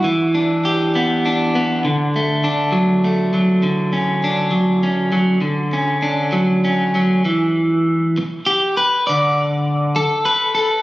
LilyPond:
\new Staff \with { instrumentName = "Clean electric guitar" } { \time 6/8 \key e \dorian \tempo 4. = 67 << { r8 d'8 g'4 d'4 | r8 a8 d'4 a4~ | a8 cis'8 d'4 cis'4 | r8 cis'8 d'4 cis'4 |
r2 g'8 b'8 | d''4. a'8 b'8 a'8 | } \\ { e4. b4 b8 | d4. fis4 fis8 | d4. fis4 fis8 | d4. fis4 fis8 |
e4. r4. | d4. r4. | } >> }